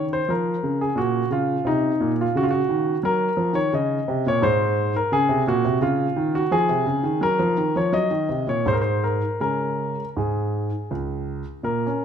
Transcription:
Already playing: D#3
0.13 C5
0.29 F3 A#4
0.63 C#3
0.81 G#4
0.96 A#2 F#4
1.30 C#3 F4
1.65 C3 D#4
2.00 A#2
2.21 F4
2.35 C#3 F#4
2.43 F4
2.51 F#4
2.69 D#3
3.03 F#3 A#4
3.37 F3
3.53 D#3 C#5
3.73 C#3 D#5
4.08 C3
4.26 A#2 C#5
4.42 G#2 C5
4.96 A#4
5.12 C#3 G#4
5.29 C3
5.47 A#2 F#4
5.65 C3
5.81 C#3 F4
6.16 D#3
6.35 F#4
6.51 F3 G#4
6.69 C3
6.86 C#3
7.03 D#3
7.21 F#3 A#4
7.39 F3
7.57 D#3
7.76 F3 C#5
7.93 F#3 D#5
8.11 D#3
8.29 C3
8.47 A#2 C#5
8.66 G#2 C5
8.73 A#4
8.81 C5
9.04 A#4
9.40 C#3 G#3 C#4 A#4
10.17 G#2 G#4
10.91 C#2
11.63 A#2 A#4
11.87 C#4

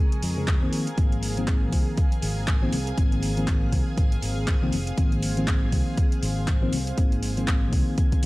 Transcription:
Already playing: C#3 F3 G#3 C4 G#4 A#4 G#5 C#6
0.12 closed hi-hat
0.23 F2, open hi-hat
0.37 C#3 F3 G#3 C4
0.48 kick, clap, closed hi-hat
0.62 D#3 F3 A#3 C4
0.72 C4 F5, open hi-hat
0.87 closed hi-hat
0.97 G#1 D#3 F3 A#3 C4 G#4 G#5, kick, closed hi-hat
1.12 closed hi-hat
1.23 open hi-hat
1.37 D#3 F3 A#3 C4, closed hi-hat
1.48 kick, clap, closed hi-hat
1.72 C2 D#3 F3 A#3 C4, kick, open hi-hat
1.98 kick, closed hi-hat
2.12 closed hi-hat
2.22 G#1, open hi-hat
2.48 kick, clap, closed hi-hat
2.62 D#3 F3 A#3 C4
2.73 C2, open hi-hat
2.87 closed hi-hat
2.97 G#1 D#3 F3 A#3 C4, kick, closed hi-hat
3.12 closed hi-hat
3.23 open hi-hat
3.37 D#3 F3 A#3 C4, closed hi-hat
3.48 kick, clap, closed hi-hat
3.72 C2 D#3 F3 A#3 C4, kick, open hi-hat
3.98 G#1, kick, closed hi-hat
4.12 closed hi-hat
4.23 G#1, open hi-hat
4.47 kick, clap, closed hi-hat
4.62 C2 D#3 F3 A#3 C4
4.72 F1 C5, open hi-hat
4.87 closed hi-hat
4.97 G#1 D#3 F3 A#3 C4, kick, closed hi-hat
5.12 closed hi-hat
5.23 open hi-hat
5.37 D#3 F3 A#3 C4, closed hi-hat
5.48 kick, clap, closed hi-hat
5.72 C2 D#3 F3 A#3 C4, kick, open hi-hat
5.98 kick, closed hi-hat
6.12 closed hi-hat
6.23 G#1, open hi-hat
6.48 kick, clap, closed hi-hat
6.62 D#3 F3 A#3 C4
6.73 C2, open hi-hat
6.87 closed hi-hat
6.97 G#1 D#3 F3 A#3 C4, kick, closed hi-hat
7.12 closed hi-hat
7.23 open hi-hat
7.37 D#3 F3 A#3 C4, closed hi-hat
7.48 kick, clap, closed hi-hat
7.72 C2 D#3 F3 A#3 C4, kick, open hi-hat
7.98 kick, closed hi-hat
8.12 kick, closed hi-hat
8.23 D#2, open hi-hat

